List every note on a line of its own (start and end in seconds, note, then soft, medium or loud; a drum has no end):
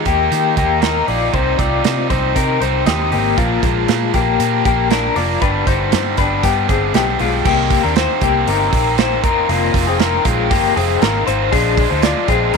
0.05 0.28 D#2 medium
0.05 0.55 A#3 soft
0.05 0.29 A#3 soft
0.05 0.30 D#4 medium
0.05 0.30 G4 medium
0.05 0.54 G4 medium
0.05 kick medium
0.05 closed hi-hat medium
0.30 0.57 D#3 medium
0.30 0.59 D#3 medium
0.30 0.56 A#3 medium
0.30 0.56 D#4 medium
0.30 0.55 G4 medium
0.30 snare soft
0.30 closed hi-hat medium
0.56 1.01 D#2 medium
0.56 0.81 A#3 soft
0.56 0.83 A#3 medium
0.56 0.81 D#4 soft
0.56 0.82 G4 medium
0.56 kick medium
0.56 closed hi-hat medium
0.81 1.08 D#3 medium
0.81 1.07 A#3 medium
0.81 1.06 D#4 loud
0.81 1.09 D#4 medium
0.81 1.05 G4 medium
0.81 1.08 A#4 medium
0.81 snare loud
0.81 closed hi-hat medium
1.06 1.30 A#1 medium
1.06 1.33 A#3 soft
1.06 1.32 D#4 soft
1.06 1.34 F4 medium
1.06 1.32 G4 soft
1.06 1.34 D5 medium
1.06 open hi-hat medium
1.32 1.55 C2 loud
1.32 1.59 C3 medium
1.32 1.59 D#3 medium
1.32 1.59 C4 medium
1.32 1.58 D#4 medium
1.32 1.60 D#4 medium
1.32 1.57 G4 loud
1.32 1.59 C5 medium
1.32 kick medium
1.32 closed hi-hat medium
1.58 1.81 C2 medium
1.58 1.83 C4 soft
1.58 1.83 D#4 soft
1.58 2.08 F4 medium
1.58 1.83 G4 medium
1.58 2.07 D5 medium
1.58 kick medium
1.58 closed hi-hat medium
1.83 2.10 C3 medium
1.83 2.12 C3 medium
1.83 2.10 D#3 medium
1.83 2.09 C4 medium
1.83 2.09 D#4 medium
1.83 2.08 G4 medium
1.83 snare loud
1.83 closed hi-hat medium
2.09 2.32 C2 medium
2.09 2.34 C4 soft
2.09 2.34 D#4 medium
2.09 2.35 D#4 medium
2.09 2.35 G4 medium
2.09 2.36 C5 medium
2.09 kick medium
2.09 closed hi-hat medium
2.34 2.58 C3 loud
2.34 2.61 D#3 medium
2.34 2.61 C4 medium
2.34 2.60 D#4 medium
2.34 2.61 D#4 medium
2.34 2.59 G4 medium
2.34 2.61 A#4 medium
2.34 kick medium
2.34 closed hi-hat medium
2.60 2.83 C2 medium
2.60 2.85 C4 soft
2.60 2.85 D#4 medium
2.60 2.87 D#4 soft
2.60 2.85 G4 medium
2.60 2.86 C5 medium
2.60 closed hi-hat medium
2.85 3.13 D#2 medium
2.85 3.12 C3 medium
2.85 3.12 D#3 medium
2.85 3.12 C4 medium
2.85 3.11 D#4 loud
2.85 3.10 G4 loud
2.85 3.11 G4 medium
2.85 3.12 D#5 medium
2.85 snare loud
2.85 closed hi-hat medium
3.11 3.34 G#1 medium
3.11 3.37 A#3 medium
3.11 3.37 C4 soft
3.11 3.37 D#4 soft
3.11 3.37 G4 medium
3.11 3.38 G4 medium
3.11 open hi-hat medium
3.37 3.60 A#1 loud
3.37 3.63 A#2 medium
3.37 3.63 F3 medium
3.37 3.63 A#3 loud
3.37 3.64 A#3 medium
3.37 3.62 D4 medium
3.37 3.62 F4 medium
3.37 3.61 A#4 loud
3.37 kick loud
3.37 closed hi-hat medium
3.62 3.85 A#1 medium
3.62 4.12 G#3 soft
3.62 3.87 A#3 soft
3.62 3.88 D4 medium
3.62 4.11 F4 medium
3.62 3.88 A#4 medium
3.62 kick medium
3.62 closed hi-hat medium
3.88 4.14 A#2 medium
3.88 4.11 A#2 loud
3.88 4.14 F3 medium
3.88 4.14 A#3 medium
3.88 4.13 D4 medium
3.88 4.12 A#4 medium
3.88 snare medium
3.88 closed hi-hat medium
4.14 4.36 A#1 medium
4.14 4.63 A#3 medium
4.14 4.39 A#3 soft
4.14 4.39 D4 medium
4.14 4.63 G4 medium
4.14 4.40 A#4 medium
4.14 kick medium
4.14 closed hi-hat medium
4.39 4.62 A#2 loud
4.39 4.65 F3 medium
4.39 4.66 A#3 medium
4.39 4.65 D4 medium
4.39 4.64 A#4 medium
4.39 closed hi-hat medium
4.65 5.09 A#1 medium
4.65 4.91 A#3 medium
4.65 4.91 A#3 soft
4.65 4.91 D4 soft
4.65 4.90 G4 medium
4.65 4.91 A#4 medium
4.65 kick medium
4.65 closed hi-hat medium
4.91 5.17 A#2 medium
4.91 5.17 F3 medium
4.91 5.17 A#3 medium
4.91 5.17 D4 medium
4.91 5.16 D4 loud
4.91 5.16 A#4 medium
4.91 5.15 A#4 loud
4.91 snare medium
4.91 closed hi-hat medium
5.16 5.38 F1 medium
5.16 5.42 A#3 soft
5.16 5.41 D4 medium
5.16 5.42 F4 medium
5.16 5.42 A#4 medium
5.16 5.41 D5 medium
5.16 open hi-hat medium
5.41 5.63 G1 medium
5.41 5.67 G2 medium
5.41 5.67 D3 medium
5.41 5.67 G3 medium
5.41 5.67 B3 medium
5.41 5.66 D4 loud
5.41 5.67 D4 medium
5.41 5.65 G4 medium
5.41 5.67 B4 loud
5.41 kick loud
5.41 closed hi-hat medium
5.67 5.94 G1 loud
5.67 5.91 G3 medium
5.67 5.91 B3 medium
5.67 5.92 D4 medium
5.67 6.16 D#4 medium
5.67 5.92 G4 medium
5.67 6.15 C5 medium
5.67 kick medium
5.67 closed hi-hat medium
5.92 6.18 G2 medium
5.92 6.14 G2 loud
5.92 6.18 D3 medium
5.92 6.18 G3 medium
5.92 6.18 B3 medium
5.92 6.17 D4 medium
5.92 6.17 G4 medium
5.92 snare loud
5.92 closed hi-hat medium
6.17 6.40 G1 medium
6.17 6.42 G3 soft
6.17 6.42 B3 soft
6.17 6.43 D4 medium
6.17 6.44 D4 medium
6.17 6.43 G4 medium
6.17 6.44 B4 medium
6.17 kick medium
6.17 closed hi-hat medium
6.43 6.65 G2 loud
6.43 6.69 G3 medium
6.43 6.68 B3 medium
6.43 6.70 B3 medium
6.43 6.68 D4 medium
6.43 6.69 G4 medium
6.43 6.67 G4 medium
6.43 kick medium
6.43 closed hi-hat medium
6.68 6.91 G1 medium
6.68 6.93 G3 soft
6.68 6.93 B3 soft
6.68 6.95 C4 soft
6.68 6.94 D4 medium
6.68 6.94 G4 medium
6.68 6.95 G#4 medium
6.68 kick medium
6.68 closed hi-hat medium
6.94 7.16 B1 medium
6.94 7.20 G2 loud
6.94 7.20 D3 medium
6.94 7.20 G3 medium
6.94 7.19 B3 loud
6.94 7.21 B3 medium
6.94 7.19 D4 loud
6.94 7.18 G4 loud
6.94 7.20 G4 medium
6.94 snare loud
6.94 closed hi-hat medium
7.19 7.42 B1 loud
7.19 7.45 G3 soft
7.19 7.46 G#3 medium
7.19 7.45 B3 soft
7.19 7.46 D4 soft
7.19 7.45 F4 medium
7.19 7.45 G4 medium
7.19 open hi-hat medium
7.45 7.78 C2 loud
7.45 7.71 C3 medium
7.45 7.71 D#3 medium
7.45 7.71 A#3 medium
7.45 7.82 A#3 medium
7.45 7.70 C4 medium
7.45 7.82 G4 loud
7.45 7.69 G4 medium
7.45 kick loud
7.45 crash medium
7.70 7.96 A#3 soft
7.70 7.96 C4 medium
7.70 7.96 G4 medium
7.70 kick loud
7.70 hi-hat pedal medium
7.70 open hi-hat medium
7.83 8.06 D#2 medium
7.83 7.97 D4 medium
7.83 7.96 A#4 medium
7.96 8.22 D#3 medium
7.96 8.22 A#3 medium
7.96 8.22 C4 medium
7.96 8.22 D#4 medium
7.96 8.21 G4 medium
7.96 8.22 C5 medium
7.96 snare loud
7.96 hi-hat pedal medium
7.96 open hi-hat medium
8.21 8.43 C2 medium
8.21 8.48 A#3 medium
8.21 8.47 A#3 medium
8.21 8.48 C4 medium
8.21 8.47 G4 medium
8.21 8.48 G4 medium
8.21 kick medium
8.21 hi-hat pedal medium
8.21 open hi-hat medium
8.47 8.69 G1 loud
8.47 8.73 C3 medium
8.47 8.73 D#3 medium
8.47 8.73 A#3 medium
8.47 8.73 C4 medium
8.47 8.96 D#4 medium
8.47 8.72 G4 medium
8.47 8.95 A#4 medium
8.47 hi-hat pedal medium
8.47 open hi-hat medium
8.73 9.24 A#1 medium
8.73 8.97 A#3 soft
8.73 8.98 C4 medium
8.73 8.98 G4 medium
8.73 kick medium
8.73 hi-hat pedal medium
8.73 open hi-hat medium
8.98 9.24 D#3 medium
8.98 9.24 A#3 medium
8.98 9.23 C4 medium
8.98 9.23 D#4 medium
8.98 9.23 G4 medium
8.98 9.23 C5 medium
8.98 snare loud
8.98 hi-hat pedal medium
8.98 open hi-hat medium
9.23 9.45 F1 loud
9.23 9.48 D#3 soft
9.23 9.48 A#3 soft
9.23 9.48 C4 medium
9.23 9.49 D#4 medium
9.23 9.49 F4 medium
9.23 9.49 A#4 medium
9.23 kick loud
9.23 hi-hat pedal medium
9.23 open hi-hat medium
9.49 9.71 F1 loud
9.49 9.74 F2 medium
9.49 9.74 C3 medium
9.49 9.74 D#3 medium
9.49 9.73 A#3 loud
9.49 9.85 A#3 medium
9.49 9.73 C4 medium
9.49 9.85 F4 medium
9.49 9.72 F4 loud
9.49 hi-hat pedal medium
9.49 open hi-hat medium
9.73 10.18 F1 loud
9.73 9.98 D#3 soft
9.73 9.98 A#3 medium
9.73 9.99 C4 medium
9.73 9.99 F4 medium
9.73 kick medium
9.73 hi-hat pedal medium
9.73 open hi-hat medium
9.87 10.00 C4 medium
9.87 9.99 G#4 medium
9.99 10.25 D#3 medium
9.99 10.25 A#3 medium
9.99 10.24 C4 medium
9.99 10.25 D#4 medium
9.99 10.24 F4 medium
9.99 10.25 A#4 medium
9.99 snare loud
9.99 hi-hat pedal medium
9.99 open hi-hat medium
10.25 10.51 A#1 medium
10.25 10.50 D#3 soft
10.25 10.51 G#3 medium
10.25 10.50 A#3 soft
10.25 10.50 C4 medium
10.25 10.51 F4 medium
10.25 kick medium
10.25 hi-hat pedal medium
10.25 open hi-hat medium
10.50 10.73 G1 loud
10.50 10.76 F2 medium
10.50 10.76 C3 medium
10.50 10.76 D#3 medium
10.50 10.76 A#3 medium
10.50 10.75 C4 medium
10.50 10.75 F4 medium
10.50 10.76 G4 medium
10.50 kick medium
10.50 snare soft
10.50 hi-hat pedal medium
10.50 open hi-hat loud
10.76 10.98 F1 medium
10.76 11.01 D#3 soft
10.76 11.01 A#3 medium
10.76 11.02 C4 medium
10.76 11.02 F4 medium
10.76 11.02 G#4 medium
10.76 hi-hat pedal medium
10.76 open hi-hat medium
11.02 11.23 G#1 medium
11.02 11.27 D#3 medium
11.02 11.27 A#3 medium
11.02 11.27 C4 medium
11.02 11.27 D#4 medium
11.02 11.26 F4 medium
11.02 11.26 A#4 medium
11.02 snare loud
11.02 hi-hat pedal medium
11.02 open hi-hat medium
11.27 11.49 G#1 medium
11.27 11.52 D#3 soft
11.27 11.52 A#3 medium
11.27 11.53 C4 medium
11.27 11.53 D#4 medium
11.27 11.52 F4 medium
11.27 11.52 C5 medium
11.27 hi-hat pedal medium
11.27 open hi-hat medium
11.52 11.85 A#1 loud
11.52 11.78 A#2 medium
11.52 11.78 F3 medium
11.52 11.78 G#3 loud
11.52 11.89 D4 medium
11.52 11.77 D4 medium
11.52 11.76 F4 loud
11.52 11.88 G#4 loud
11.52 kick medium
11.52 hi-hat pedal medium
11.52 open hi-hat medium
11.77 12.02 G#3 medium
11.77 12.02 D4 medium
11.77 12.03 F4 medium
11.77 kick medium
11.77 hi-hat pedal medium
11.77 open hi-hat medium
11.90 12.12 D2 medium
11.90 12.03 D#4 medium
11.90 12.03 C5 medium
12.02 12.28 F3 medium
12.02 12.29 G#3 medium
12.02 12.28 D4 medium
12.02 12.29 F4 medium
12.02 12.27 F4 medium
12.02 12.29 D5 medium
12.02 snare loud
12.02 hi-hat pedal medium
12.02 open hi-hat medium
12.28 12.50 A#1 medium
12.28 12.52 G#3 soft
12.28 12.54 C4 medium
12.28 12.53 D4 medium
12.28 12.53 F4 medium
12.28 12.54 G#4 medium
12.28 kick medium
12.28 hi-hat pedal medium
12.28 open hi-hat medium
12.53 12.57 A#2 medium
12.53 12.57 F3 medium
12.53 12.57 G#3 medium
12.53 snare soft
12.53 hi-hat pedal medium
12.53 open hi-hat medium